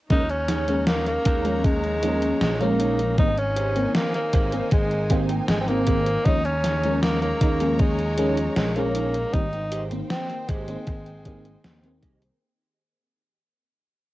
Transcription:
0.10 slap bass D#2, fm electric piano F3 G#3 A#3 C#4, string section D#4 C#5 A#5, tenor saxophone D#4, kick, closed hi-hat
0.29 tenor saxophone C#4, closed hi-hat
0.48 clean electric guitar D#4 G#4 C#5, snare, closed hi-hat
0.68 fm electric piano F3 G#3 A#3 C#4, closed hi-hat
0.87 tenor saxophone A#3, snare, closed hi-hat
1.06 tenor saxophone A#3, closed hi-hat
1.25 slap bass D#2, clean electric guitar D#4 G#4 A#4, kick, closed hi-hat
1.44 fm electric piano F3 G#3 A#3 C#4, closed hi-hat
1.64 tenor saxophone G#3, kick, closed hi-hat
1.84 closed hi-hat
2.02 fm electric piano F3 G#3 A#3 C#4, clean electric guitar D#4 G#4 A#4, closed hi-hat
2.22 closed hi-hat
2.41 slap bass A#1, tenor saxophone G#3, snare, closed hi-hat
2.60 fm electric piano F3 G#3 A#3 C#4, tenor saxophone A#3, closed hi-hat
2.79 clean electric guitar D#4 G#4 C#5, closed hi-hat
2.99 closed hi-hat
3.18 slap bass G#1, fm electric piano D#3 G3 A#3 C4, tenor saxophone D#4, string section C5 G#5, kick, closed hi-hat
3.38 tenor saxophone C#4, closed hi-hat
3.56 clean electric guitar G4 G#4 C5, closed hi-hat
3.75 fm electric piano D#3 A#3 C4, closed hi-hat
3.95 tenor saxophone A#3, snare, closed hi-hat
4.14 tenor saxophone A#3, closed hi-hat
4.33 slap bass G#1, clean electric guitar G4 G#4 C5, kick, closed hi-hat
4.52 fm electric piano D#3 A#3 C4, closed hi-hat
4.71 slap bass G#1, tenor saxophone G#3, clean electric guitar D#5, kick, closed hi-hat
4.91 closed hi-hat
5.10 fm electric piano D#3 A#3 C4, clean electric guitar G4 G#4 C5 F5, kick, closed hi-hat
5.29 clean electric guitar G5, closed hi-hat
5.48 slap bass G#1, tenor saxophone G#3, clean electric guitar G#5, snare, closed hi-hat
5.60 tenor saxophone C4
5.68 fm electric piano D#3 A#3 C4, tenor saxophone A#3, closed hi-hat
5.87 clean electric guitar G4 G#4 C5, kick, closed hi-hat
6.06 closed hi-hat
6.25 slap bass D#2, fm electric piano F3 G#3 A#3 C#4, tenor saxophone D#4, string section C#5 A#5, kick, closed hi-hat
6.45 tenor saxophone C#4, closed hi-hat
6.63 clean electric guitar D#4 G#4 C#5, snare, closed hi-hat
6.84 fm electric piano F3 G#3 A#3 C#4, closed hi-hat
7.02 tenor saxophone A#3, snare, closed hi-hat
7.22 tenor saxophone A#3, closed hi-hat
7.40 slap bass D#2, clean electric guitar D#4 G#4 D#5, kick, closed hi-hat
7.60 fm electric piano F3 G#3 A#3 C#4, closed hi-hat
7.79 tenor saxophone G#3, kick, closed hi-hat
7.99 closed hi-hat
8.17 fm electric piano F3 G#3 A#3 C#4, clean electric guitar D#4 G#4 C#5, closed hi-hat
8.37 closed hi-hat
8.56 slap bass A#1, tenor saxophone G#3, snare, closed hi-hat
8.75 fm electric piano F3 G#3 A#3 C#4, tenor saxophone A#3, closed hi-hat
8.95 clean electric guitar D#4 G#4 C#5, closed hi-hat
9.14 closed hi-hat
9.33 slap bass G#1, fm electric piano D#3 G3 A#3 C4, tenor saxophone D#4, string section C5 G5, kick, closed hi-hat
9.53 closed hi-hat
9.71 clean electric guitar G4 G#4 C5, closed hi-hat
9.90 fm electric piano D#3 A#3 C4, closed hi-hat
10.10 tenor saxophone C4, snare, closed hi-hat
10.30 closed hi-hat
10.49 slap bass G#1, tenor saxophone G#3, clean electric guitar G4 G#4 C5, kick, closed hi-hat
10.67 fm electric piano D#3 A#3 C4, closed hi-hat
10.87 slap bass G#1, kick, closed hi-hat
11.06 closed hi-hat
11.25 fm electric piano D#3 A#3 C4, clean electric guitar G4 G#4 A#4, kick, closed hi-hat
11.45 closed hi-hat
11.64 slap bass D#2, snare, closed hi-hat
11.83 fm electric piano D#3 A#3 C4, closed hi-hat
12.02 slap bass C2, clean electric guitar G4 G#4 D#5, kick, closed hi-hat
12.22 closed hi-hat

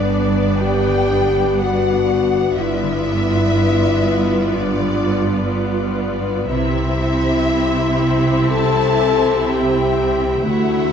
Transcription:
Already playing: double bass section G1, harp G2 D3 D4 D5, cello section G2, viola section B3 D4, french horn section D4, violin section D5
0.08 harp B4
0.34 harp D4
0.61 harp G2, french horn section G4, violin section G5
0.86 harp D3
1.11 harp D4
1.37 harp D3
1.61 french horn section F#4, harp B4, violin section F#5
1.85 harp D5
2.09 harp B4
2.34 harp D4
2.57 double bass section G1, cello section G2, harp G2, viola section B3 F4, french horn section E4, violin section D5 E5
2.82 harp D3
3.07 harp D4
3.32 harp F4
3.57 harp B4
3.81 harp D5
4.06 harp B4
4.31 harp F4
4.54 harp G2, french horn section D4, violin section D5
4.79 harp D3
5.03 harp D4
5.27 harp F4
5.51 harp B4
5.76 harp D5
6.01 harp B4
6.26 harp F4
6.50 double bass section C2, cello section C3, harp C3, viola section C4 E4, french horn section E4, violin section E5
6.75 harp G3
7.00 harp E4
7.24 harp G3
7.49 harp C5
7.74 harp E5
8.00 harp C5
8.25 harp E4
8.50 harp C3, french horn section A4, violin section A5
8.75 harp G3
8.99 harp E4
9.23 harp G3
9.47 french horn section G4, harp C5, violin section G5
9.71 harp E5
9.96 harp C5
10.20 harp E4
10.44 double bass section D2, cello section D2, harp D3, viola section A3 E4, french horn section F#4, violin section E5 F#5
10.69 harp A3

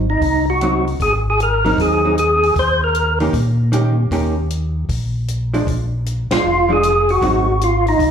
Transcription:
Already playing: tonewheel organ G#1
0.10 tonewheel organ D#4
0.21 tonewheel organ C2, kick, open hi-hat
0.50 tonewheel organ F#4
0.61 hollow-body jazz guitar F#3 C4 D#4, closed hi-hat
0.87 open hi-hat
1.00 tonewheel organ G#1 G#4, kick, open hi-hat
1.30 tonewheel organ G#4
1.40 tonewheel organ A#4, closed hi-hat
1.65 hollow-body jazz guitar F#3 C4 D#4, open hi-hat
1.78 tonewheel organ D#2 G#4, kick, open hi-hat
2.05 hollow-body jazz guitar F#3 C4 D#4
2.18 tonewheel organ G#4, closed hi-hat
2.43 open hi-hat
2.56 tonewheel organ D#2 C5, kick, open hi-hat
2.84 tonewheel organ A#4
2.95 closed hi-hat
3.20 hollow-body jazz guitar D#3 A#3 C#4 G4, open hi-hat
3.33 tonewheel organ A#2, kick, open hi-hat
3.72 hollow-body jazz guitar D#3 A#3 C#4 G4, closed hi-hat
4.11 tonewheel organ D#2, hollow-body jazz guitar D#3 A#3 C#4 G4, kick, open hi-hat
4.50 closed hi-hat
4.89 tonewheel organ A#1, kick, open hi-hat
5.28 closed hi-hat
5.54 hollow-body jazz guitar F3 G#3 D4, open hi-hat
5.67 tonewheel organ A#1, kick, open hi-hat
6.06 closed hi-hat
6.31 tonewheel organ A#1 F4, hollow-body jazz guitar F3 G#3 D4, snare, ride
6.44 tonewheel organ F1
6.69 hollow-body jazz guitar F3 G#3 D4, tonewheel organ G#4
6.83 closed hi-hat
7.09 tonewheel organ F#4, open hi-hat
7.21 tonewheel organ G#1, hollow-body jazz guitar F#3 C4 D#4, kick, open hi-hat
7.61 tonewheel organ F4, closed hi-hat
7.87 tonewheel organ D#4, open hi-hat
7.99 tonewheel organ C2, kick, open hi-hat

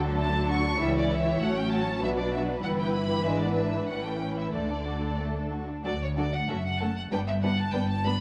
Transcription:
Already playing: double bass section D2, cello section D3, viola section F#3 D4, violin section A4
0.02 violin section D4
0.18 violin section A3 A5
0.33 violin section D4
0.49 violin section F#4 C#6
0.64 violin section D4
0.79 double bass section C#2, cello section C#3, viola section E3 E4, violin section G3 C#5 E5
0.96 violin section C#4 D5
1.11 violin section E4 E5
1.26 violin section G4
1.41 double bass section A1, cello section A2, viola section F#3 C#4, violin section A3 F#5
1.57 violin section C#4 G5
1.72 violin section F#4 A5
1.88 violin section C#4
2.02 double bass section B1, cello section B2, violin section B3 B4 E5, viola section D4
2.18 violin section D4 D5
2.34 violin section F#4 E5
2.49 violin section D4
2.64 double bass section G1, cello section G2, viola section E3 E4, violin section G3 F#5
2.80 violin section B3 G5
2.95 violin section E4 B5
3.10 violin section G4
3.25 double bass section G#1, cello section G#2, violin section G#3 E5, viola section D4
3.41 violin section B3 D5
3.56 violin section D4 E5
3.73 violin section E4
3.88 double bass section A1, cello section A2, violin section G3 F#5, viola section C#4
4.04 violin section A3 G5
4.21 violin section C#4
4.37 violin section E4 E5
4.53 cello section D2, double bass section D2, viola section D3 D4, violin section A3 A4 D5
4.70 violin section D4
4.86 violin section F#4
5.03 violin section D4
5.19 violin section A3
5.37 violin section D4
5.52 violin section F#4
5.69 violin section D4
5.84 double bass section D2, cello section D2, viola section F#3 D4, violin section F#4 A4 D5
6.03 violin section C#5
6.17 viola section F#3 D4, violin section F#4 A4 D5
6.35 violin section F#5
6.49 double bass section F#1, cello section F#2, viola section A3 C#4, violin section F#4 A4 E5
6.66 violin section F#5
6.80 viola section A3 C#4, violin section F#4 A4 A5
6.98 violin section F#5
7.12 double bass section G1, cello section G2, viola section G3 B3, violin section D4 B4 G5
7.28 violin section E5
7.43 viola section G3 B3, violin section D4 B4 F#5
7.59 violin section A5
7.73 double bass section G1, cello section G2, viola section G3 B3, violin section D4 B4 G5
7.90 violin section A5
8.05 viola section G3 B3, violin section D4 B4 B5

